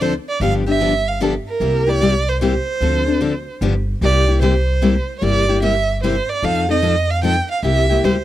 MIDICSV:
0, 0, Header, 1, 4, 480
1, 0, Start_track
1, 0, Tempo, 401070
1, 487, Time_signature, 3, 2, 24, 8
1, 9866, End_track
2, 0, Start_track
2, 0, Title_t, "Violin"
2, 0, Program_c, 0, 40
2, 23, Note_on_c, 0, 72, 86
2, 158, Note_off_c, 0, 72, 0
2, 342, Note_on_c, 0, 74, 80
2, 490, Note_off_c, 0, 74, 0
2, 501, Note_on_c, 0, 77, 95
2, 636, Note_off_c, 0, 77, 0
2, 812, Note_on_c, 0, 76, 101
2, 1289, Note_on_c, 0, 77, 86
2, 1307, Note_off_c, 0, 76, 0
2, 1454, Note_off_c, 0, 77, 0
2, 1467, Note_on_c, 0, 69, 84
2, 1600, Note_off_c, 0, 69, 0
2, 1776, Note_on_c, 0, 70, 92
2, 2257, Note_on_c, 0, 74, 102
2, 2275, Note_off_c, 0, 70, 0
2, 2735, Note_on_c, 0, 72, 82
2, 2753, Note_off_c, 0, 74, 0
2, 2891, Note_off_c, 0, 72, 0
2, 2899, Note_on_c, 0, 72, 90
2, 4283, Note_off_c, 0, 72, 0
2, 4827, Note_on_c, 0, 74, 109
2, 5262, Note_off_c, 0, 74, 0
2, 5294, Note_on_c, 0, 72, 79
2, 6140, Note_off_c, 0, 72, 0
2, 6204, Note_on_c, 0, 73, 59
2, 6257, Note_on_c, 0, 74, 109
2, 6275, Note_off_c, 0, 73, 0
2, 6730, Note_off_c, 0, 74, 0
2, 6736, Note_on_c, 0, 76, 94
2, 7177, Note_off_c, 0, 76, 0
2, 7219, Note_on_c, 0, 72, 84
2, 7529, Note_on_c, 0, 74, 96
2, 7547, Note_off_c, 0, 72, 0
2, 7711, Note_on_c, 0, 77, 108
2, 7729, Note_off_c, 0, 74, 0
2, 8005, Note_off_c, 0, 77, 0
2, 8022, Note_on_c, 0, 75, 100
2, 8500, Note_on_c, 0, 77, 98
2, 8518, Note_off_c, 0, 75, 0
2, 8659, Note_off_c, 0, 77, 0
2, 8667, Note_on_c, 0, 79, 103
2, 8943, Note_off_c, 0, 79, 0
2, 8989, Note_on_c, 0, 77, 87
2, 9133, Note_off_c, 0, 77, 0
2, 9155, Note_on_c, 0, 76, 107
2, 9631, Note_on_c, 0, 72, 84
2, 9649, Note_off_c, 0, 76, 0
2, 9866, Note_off_c, 0, 72, 0
2, 9866, End_track
3, 0, Start_track
3, 0, Title_t, "Steel-string acoustic guitar"
3, 0, Program_c, 1, 25
3, 9, Note_on_c, 1, 50, 76
3, 14, Note_on_c, 1, 53, 81
3, 20, Note_on_c, 1, 60, 77
3, 22, Note_on_c, 1, 62, 91
3, 22, Note_on_c, 1, 69, 87
3, 146, Note_off_c, 1, 50, 0
3, 149, Note_off_c, 1, 53, 0
3, 152, Note_off_c, 1, 60, 0
3, 153, Note_off_c, 1, 62, 0
3, 153, Note_off_c, 1, 69, 0
3, 485, Note_on_c, 1, 50, 63
3, 494, Note_on_c, 1, 53, 66
3, 496, Note_on_c, 1, 59, 68
3, 501, Note_on_c, 1, 62, 64
3, 508, Note_on_c, 1, 67, 70
3, 747, Note_off_c, 1, 50, 0
3, 751, Note_off_c, 1, 53, 0
3, 752, Note_off_c, 1, 59, 0
3, 754, Note_off_c, 1, 62, 0
3, 758, Note_off_c, 1, 67, 0
3, 794, Note_on_c, 1, 67, 59
3, 808, Note_on_c, 1, 62, 57
3, 822, Note_on_c, 1, 59, 45
3, 958, Note_off_c, 1, 59, 0
3, 958, Note_on_c, 1, 50, 77
3, 959, Note_off_c, 1, 62, 0
3, 959, Note_off_c, 1, 67, 0
3, 963, Note_on_c, 1, 53, 72
3, 972, Note_on_c, 1, 59, 85
3, 974, Note_on_c, 1, 62, 84
3, 977, Note_on_c, 1, 67, 85
3, 1100, Note_off_c, 1, 50, 0
3, 1102, Note_off_c, 1, 53, 0
3, 1107, Note_off_c, 1, 59, 0
3, 1108, Note_off_c, 1, 62, 0
3, 1109, Note_off_c, 1, 67, 0
3, 1442, Note_on_c, 1, 50, 85
3, 1447, Note_on_c, 1, 53, 76
3, 1450, Note_on_c, 1, 59, 89
3, 1455, Note_on_c, 1, 62, 99
3, 1458, Note_on_c, 1, 67, 91
3, 1582, Note_off_c, 1, 50, 0
3, 1584, Note_off_c, 1, 53, 0
3, 1586, Note_off_c, 1, 59, 0
3, 1588, Note_off_c, 1, 62, 0
3, 1590, Note_off_c, 1, 67, 0
3, 1918, Note_on_c, 1, 48, 56
3, 1923, Note_on_c, 1, 55, 61
3, 1929, Note_on_c, 1, 58, 66
3, 1932, Note_on_c, 1, 64, 67
3, 1934, Note_on_c, 1, 67, 76
3, 2182, Note_off_c, 1, 48, 0
3, 2185, Note_off_c, 1, 55, 0
3, 2188, Note_off_c, 1, 58, 0
3, 2189, Note_off_c, 1, 64, 0
3, 2190, Note_off_c, 1, 67, 0
3, 2232, Note_on_c, 1, 67, 58
3, 2243, Note_on_c, 1, 64, 59
3, 2257, Note_on_c, 1, 58, 49
3, 2398, Note_off_c, 1, 67, 0
3, 2402, Note_off_c, 1, 58, 0
3, 2403, Note_off_c, 1, 64, 0
3, 2404, Note_on_c, 1, 48, 76
3, 2413, Note_on_c, 1, 55, 82
3, 2417, Note_on_c, 1, 58, 76
3, 2421, Note_on_c, 1, 64, 82
3, 2426, Note_on_c, 1, 67, 92
3, 2542, Note_off_c, 1, 48, 0
3, 2547, Note_off_c, 1, 55, 0
3, 2548, Note_off_c, 1, 58, 0
3, 2550, Note_off_c, 1, 64, 0
3, 2553, Note_off_c, 1, 67, 0
3, 2885, Note_on_c, 1, 48, 86
3, 2893, Note_on_c, 1, 55, 85
3, 2896, Note_on_c, 1, 58, 79
3, 2899, Note_on_c, 1, 64, 84
3, 2899, Note_on_c, 1, 67, 100
3, 3023, Note_off_c, 1, 48, 0
3, 3026, Note_off_c, 1, 55, 0
3, 3028, Note_off_c, 1, 58, 0
3, 3030, Note_off_c, 1, 64, 0
3, 3030, Note_off_c, 1, 67, 0
3, 3362, Note_on_c, 1, 50, 67
3, 3368, Note_on_c, 1, 53, 66
3, 3375, Note_on_c, 1, 60, 71
3, 3380, Note_on_c, 1, 62, 58
3, 3381, Note_on_c, 1, 69, 72
3, 3623, Note_off_c, 1, 50, 0
3, 3627, Note_off_c, 1, 53, 0
3, 3630, Note_off_c, 1, 60, 0
3, 3633, Note_off_c, 1, 62, 0
3, 3633, Note_off_c, 1, 69, 0
3, 3663, Note_on_c, 1, 69, 60
3, 3678, Note_on_c, 1, 62, 55
3, 3693, Note_on_c, 1, 60, 48
3, 3830, Note_off_c, 1, 60, 0
3, 3833, Note_off_c, 1, 69, 0
3, 3836, Note_off_c, 1, 62, 0
3, 3837, Note_on_c, 1, 50, 78
3, 3843, Note_on_c, 1, 53, 80
3, 3844, Note_on_c, 1, 60, 71
3, 3850, Note_on_c, 1, 62, 83
3, 3853, Note_on_c, 1, 69, 82
3, 3978, Note_off_c, 1, 50, 0
3, 3981, Note_off_c, 1, 53, 0
3, 3982, Note_off_c, 1, 60, 0
3, 3985, Note_off_c, 1, 62, 0
3, 3986, Note_off_c, 1, 69, 0
3, 4328, Note_on_c, 1, 50, 84
3, 4332, Note_on_c, 1, 59, 89
3, 4333, Note_on_c, 1, 53, 85
3, 4340, Note_on_c, 1, 62, 85
3, 4342, Note_on_c, 1, 67, 95
3, 4464, Note_off_c, 1, 50, 0
3, 4466, Note_off_c, 1, 53, 0
3, 4466, Note_off_c, 1, 59, 0
3, 4469, Note_off_c, 1, 62, 0
3, 4471, Note_off_c, 1, 67, 0
3, 4807, Note_on_c, 1, 48, 54
3, 4811, Note_on_c, 1, 55, 61
3, 4814, Note_on_c, 1, 58, 64
3, 4824, Note_on_c, 1, 67, 66
3, 4825, Note_on_c, 1, 64, 59
3, 5066, Note_off_c, 1, 48, 0
3, 5068, Note_off_c, 1, 55, 0
3, 5069, Note_off_c, 1, 58, 0
3, 5074, Note_off_c, 1, 67, 0
3, 5075, Note_off_c, 1, 64, 0
3, 5108, Note_on_c, 1, 67, 57
3, 5127, Note_on_c, 1, 64, 54
3, 5137, Note_on_c, 1, 58, 49
3, 5275, Note_off_c, 1, 67, 0
3, 5275, Note_on_c, 1, 48, 78
3, 5276, Note_off_c, 1, 58, 0
3, 5281, Note_off_c, 1, 64, 0
3, 5285, Note_on_c, 1, 55, 79
3, 5290, Note_on_c, 1, 58, 81
3, 5296, Note_on_c, 1, 64, 80
3, 5296, Note_on_c, 1, 67, 90
3, 5417, Note_off_c, 1, 48, 0
3, 5422, Note_off_c, 1, 55, 0
3, 5425, Note_off_c, 1, 58, 0
3, 5427, Note_off_c, 1, 64, 0
3, 5428, Note_off_c, 1, 67, 0
3, 5765, Note_on_c, 1, 48, 82
3, 5770, Note_on_c, 1, 55, 84
3, 5774, Note_on_c, 1, 58, 83
3, 5775, Note_on_c, 1, 64, 95
3, 5785, Note_on_c, 1, 67, 80
3, 5902, Note_off_c, 1, 48, 0
3, 5905, Note_off_c, 1, 55, 0
3, 5907, Note_off_c, 1, 58, 0
3, 5907, Note_off_c, 1, 64, 0
3, 5912, Note_off_c, 1, 67, 0
3, 6237, Note_on_c, 1, 48, 59
3, 6243, Note_on_c, 1, 55, 55
3, 6243, Note_on_c, 1, 58, 58
3, 6250, Note_on_c, 1, 64, 71
3, 6256, Note_on_c, 1, 67, 70
3, 6501, Note_off_c, 1, 48, 0
3, 6504, Note_off_c, 1, 55, 0
3, 6504, Note_off_c, 1, 58, 0
3, 6508, Note_off_c, 1, 64, 0
3, 6510, Note_off_c, 1, 67, 0
3, 6561, Note_on_c, 1, 67, 60
3, 6573, Note_on_c, 1, 64, 60
3, 6584, Note_on_c, 1, 58, 53
3, 6718, Note_off_c, 1, 58, 0
3, 6718, Note_off_c, 1, 64, 0
3, 6722, Note_off_c, 1, 67, 0
3, 6725, Note_on_c, 1, 48, 87
3, 6728, Note_on_c, 1, 55, 71
3, 6733, Note_on_c, 1, 58, 83
3, 6733, Note_on_c, 1, 64, 69
3, 6738, Note_on_c, 1, 67, 90
3, 6862, Note_off_c, 1, 48, 0
3, 6864, Note_off_c, 1, 55, 0
3, 6866, Note_off_c, 1, 58, 0
3, 6866, Note_off_c, 1, 64, 0
3, 6869, Note_off_c, 1, 67, 0
3, 7219, Note_on_c, 1, 48, 75
3, 7224, Note_on_c, 1, 55, 78
3, 7226, Note_on_c, 1, 58, 89
3, 7230, Note_on_c, 1, 64, 92
3, 7233, Note_on_c, 1, 67, 90
3, 7350, Note_off_c, 1, 48, 0
3, 7352, Note_off_c, 1, 55, 0
3, 7353, Note_off_c, 1, 58, 0
3, 7355, Note_off_c, 1, 64, 0
3, 7356, Note_off_c, 1, 67, 0
3, 7693, Note_on_c, 1, 53, 66
3, 7700, Note_on_c, 1, 60, 67
3, 7704, Note_on_c, 1, 63, 73
3, 7708, Note_on_c, 1, 69, 72
3, 7950, Note_off_c, 1, 53, 0
3, 7953, Note_off_c, 1, 60, 0
3, 7956, Note_off_c, 1, 63, 0
3, 7957, Note_off_c, 1, 69, 0
3, 8004, Note_on_c, 1, 69, 55
3, 8019, Note_on_c, 1, 63, 51
3, 8032, Note_on_c, 1, 60, 48
3, 8159, Note_off_c, 1, 60, 0
3, 8160, Note_off_c, 1, 63, 0
3, 8164, Note_off_c, 1, 69, 0
3, 8166, Note_on_c, 1, 53, 88
3, 8173, Note_on_c, 1, 60, 81
3, 8174, Note_on_c, 1, 63, 72
3, 8179, Note_on_c, 1, 69, 92
3, 8304, Note_off_c, 1, 53, 0
3, 8307, Note_off_c, 1, 60, 0
3, 8308, Note_off_c, 1, 63, 0
3, 8310, Note_off_c, 1, 69, 0
3, 8653, Note_on_c, 1, 53, 86
3, 8665, Note_on_c, 1, 60, 80
3, 8670, Note_on_c, 1, 63, 88
3, 8675, Note_on_c, 1, 69, 98
3, 8788, Note_off_c, 1, 53, 0
3, 8794, Note_off_c, 1, 60, 0
3, 8796, Note_off_c, 1, 63, 0
3, 8799, Note_off_c, 1, 69, 0
3, 9133, Note_on_c, 1, 48, 55
3, 9139, Note_on_c, 1, 55, 61
3, 9142, Note_on_c, 1, 58, 65
3, 9147, Note_on_c, 1, 64, 67
3, 9149, Note_on_c, 1, 67, 65
3, 9391, Note_off_c, 1, 48, 0
3, 9394, Note_off_c, 1, 55, 0
3, 9396, Note_off_c, 1, 58, 0
3, 9398, Note_off_c, 1, 64, 0
3, 9399, Note_off_c, 1, 67, 0
3, 9444, Note_on_c, 1, 67, 62
3, 9458, Note_on_c, 1, 64, 59
3, 9473, Note_on_c, 1, 58, 47
3, 9605, Note_off_c, 1, 67, 0
3, 9612, Note_off_c, 1, 64, 0
3, 9617, Note_off_c, 1, 58, 0
3, 9622, Note_on_c, 1, 48, 74
3, 9625, Note_on_c, 1, 55, 76
3, 9631, Note_on_c, 1, 58, 81
3, 9634, Note_on_c, 1, 64, 77
3, 9634, Note_on_c, 1, 67, 87
3, 9753, Note_off_c, 1, 48, 0
3, 9755, Note_off_c, 1, 55, 0
3, 9758, Note_off_c, 1, 58, 0
3, 9759, Note_off_c, 1, 64, 0
3, 9759, Note_off_c, 1, 67, 0
3, 9866, End_track
4, 0, Start_track
4, 0, Title_t, "Upright bass"
4, 0, Program_c, 2, 32
4, 0, Note_on_c, 2, 38, 77
4, 195, Note_off_c, 2, 38, 0
4, 477, Note_on_c, 2, 31, 82
4, 1631, Note_off_c, 2, 31, 0
4, 1916, Note_on_c, 2, 36, 77
4, 3071, Note_off_c, 2, 36, 0
4, 3358, Note_on_c, 2, 38, 75
4, 4128, Note_off_c, 2, 38, 0
4, 4321, Note_on_c, 2, 31, 89
4, 4705, Note_off_c, 2, 31, 0
4, 4803, Note_on_c, 2, 36, 88
4, 5955, Note_off_c, 2, 36, 0
4, 6249, Note_on_c, 2, 31, 74
4, 7399, Note_off_c, 2, 31, 0
4, 7689, Note_on_c, 2, 41, 92
4, 8841, Note_off_c, 2, 41, 0
4, 9128, Note_on_c, 2, 36, 79
4, 9512, Note_off_c, 2, 36, 0
4, 9612, Note_on_c, 2, 38, 72
4, 9866, Note_off_c, 2, 38, 0
4, 9866, End_track
0, 0, End_of_file